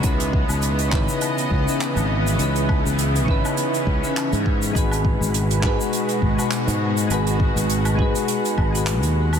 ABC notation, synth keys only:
X:1
M:4/4
L:1/16
Q:"Swing 16ths" 1/4=102
K:C#m
V:1 name="Synth keys"
[C,CDEB]6 [C,CDEB]4- [C,CDEB] [C,CDEB]4- [C,CDEB] | [C,CDEB]6 [C,CDEB]4- [C,CDEB] [C,CDEB]3 z2 | [G,DFGB]6 [G,DFGB]4- [G,DFGB] [G,DFGB]4- [G,DFGB] | [G,DFGB]6 [G,DFGB]4- [G,DFGB] [G,DFGB]4- [G,DFGB] |]